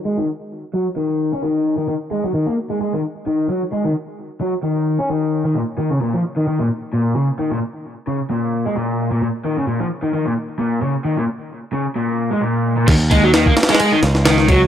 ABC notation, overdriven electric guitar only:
X:1
M:4/4
L:1/16
Q:"Swing 16ths" 1/4=131
K:Ebm
V:1 name="Overdriven electric guitar" clef=bass
A, E, z4 G, z E,3 D E,3 E, | E, z A, G, E, B, z A, A, E, z2 E,2 G, z | A, E, z4 G, z E,3 D E,3 E, | B,, z E, D, B,, F, z E, E, B,, z2 B,,2 D, z |
E, B,, z4 D, z B,,3 A, B,,3 B,, | B,, z E, D, B,, F, z E, E, B,, z2 B,,2 D, z | E, B,, z4 D, z B,,3 A, B,,3 B,, | E, z A, G, E, B, z A, A, E, z2 E,2 G, z |]